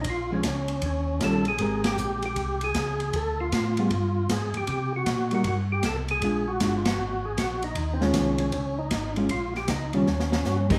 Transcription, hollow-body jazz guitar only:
X:1
M:4/4
L:1/8
Q:"Swing" 1/4=156
K:Ebmix
V:1 name="Hollow-body jazz guitar"
z [F,A,D] z4 [E,G,DF] z | [A,CGB]4- [A,CGB] z3 | z3 [G,_CFA] z4 | z3 [G,B,E] z4 |
[A,=DF] z [A,DF] z4 z | z [E,A,DF]3 z3 [A,DF] | z3 [E,G,DF] z3 [A,CGB] |]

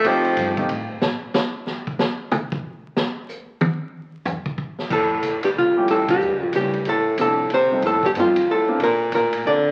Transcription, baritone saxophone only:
X:1
M:3/4
L:1/8
Q:"Swing" 1/4=185
K:F
V:1 name="Baritone saxophone" clef=bass
F,3 z3 | z6 | z6 | z6 |
z6 | A,,3 G,, F,,2 | A,, G,,3 G,,2 | A,,2 A,,2 C,2 |
A,, G,, F,,2 A,,2 | B,,2 B,,2 D,2 |]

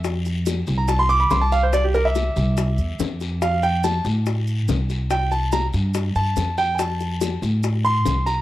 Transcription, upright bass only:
X:1
M:4/4
L:1/8
Q:1/4=142
K:F
V:1 name="Upright bass" clef=bass
F,,3 C,,3 C,,2- | C,,3 C,,2 E,, F,,2- | F,,3 A,,3 C,,2- | C,,3 G,,2 G,, F,,2- |
F,,3 A,,3 C,,2 |]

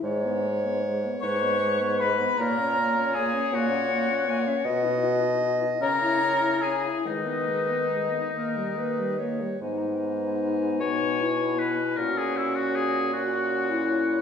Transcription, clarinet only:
X:1
M:6/8
L:1/16
Q:3/8=51
K:G#m
V:1 name="Clarinet"
c6 B6 | c12 | d6 c4 z2 | B6 A2 B2 c2 |
D8 E4 | F6 F3 E3 |]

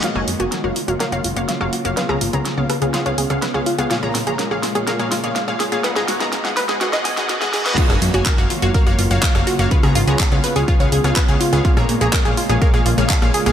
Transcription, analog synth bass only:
X:1
M:4/4
L:1/16
Q:1/4=124
K:F#
V:1 name="Analog synth bass" clef=bass
z F,,, F,, F,,, z F,,, z F,,, z F,,, F,,, F,,, z F,,, z F,,, | z C,, G,,, C,, z C,, z C,, z C,, C,, C,, z C,, z C,, | z A,,, A,, A,,, z A,,, z A,,, z A,,, A,,, A,,, z A,,, z A,,, | z G,,, G,, G,,, z G,,, z G,,, z G,,, G,,, G,,, z G,,, z G,,, |
z F,,, F,, F,,, z F,,, z F,,, z F,,, F,,, F,,, z F,,, z F,,, | z C,, G,,, C,, z C,, z C,, z C,, C,, C,, z C,, z C,, | z A,,, A,, A,,, z A,,, z A,,, z A,,, A,,, A,,, z A,,, z A,,, |]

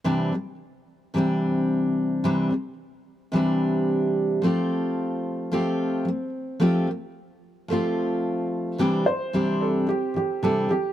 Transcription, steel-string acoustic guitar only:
X:1
M:4/4
L:1/8
Q:1/4=110
K:C
V:1 name="Steel-string acoustic guitar" clef=bass
[C,E,G,CDG] [C,E,G,] z2 [C,E,G,CDG]4 | [C,E,G,CDG] [C,E,G,] z2 [C,E,G,CDG]4 | [F,A,CFG]4 [F,A,CFG]2 [F,A,] z | [F,A,CFG] [F,A,] z2 [F,A,CFG]4 |
[C,E,G,CDG] [C,E,] [C,E,G,CDG]2 [C,E,G,] [C,E,G,] [C,E,G,CDG] [C,E,G,] |]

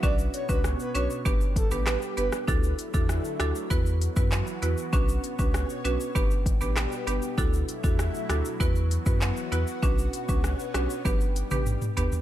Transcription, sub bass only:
X:1
M:4/4
L:1/16
Q:1/4=98
K:Bm
V:1 name="Sub bass" clef=bass
B,,,2 z C,,2 z B,,, z G,,,3 A,,,2 z G,,, z | D,,2 z E,,2 z D,, z E,,3 F,,2 z E,, z | B,,,2 z C,,2 z B,,, z G,,,3 A,,,2 z G,,, z | D,,2 z E,,2 z D,, z E,,3 F,,2 z E,, z |
B,,,2 z C,,2 z B,,, z G,,,3 A,,,2 z G,,, z |]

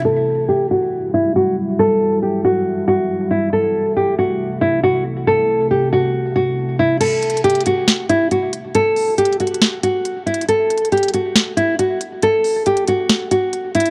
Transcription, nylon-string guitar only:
X:1
M:4/4
L:1/8
Q:1/4=138
K:Em
V:1 name="Nylon-string guitar"
A2 G F2 E F z | A2 G F2 F2 E | A2 G F2 E F z | A2 G F2 F2 E |
A2 G F2 E F z | A2 G F2 F2 E | A2 G F2 E F z | A2 G F2 F2 E |]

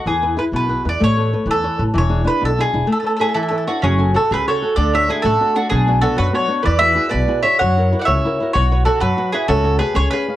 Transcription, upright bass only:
X:1
M:6/8
L:1/8
Q:3/8=128
K:A
V:1 name="Upright bass" clef=bass
E,,3 B,,,2 E,, | A,,,3 E,,2 A,,, | E,,,3 B,,,2 E,,, | z6 |
[K:F#m] F,,,3 C,, z2 | D,,3 A,,, z2 | B,,,3 F,, z2 | E,,3 B,,, z2 |
F,,3 C,, z2 | B,,,3 F,, z2 | C,,3 C,, z2 |]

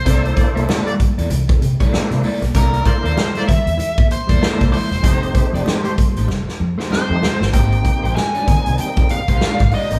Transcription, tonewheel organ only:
X:1
M:4/4
L:1/16
Q:"Swing 16ths" 1/4=96
K:Cmix
V:1 name="Tonewheel organ"
[B,DEA]4- [B,DEA] z6 z [B,DEc]2 z2 | [B,DEGB]4- [B,DEGB] z6 z [B,DEA]2 z2 | [_A,=A,C_EG]4- [_A,=A,CEG] z6 z [A,CEG]2 z2 | [B,C_EG]3 z3 [G,B,CE]4- [G,B,CE] z4 [B,CEG] |]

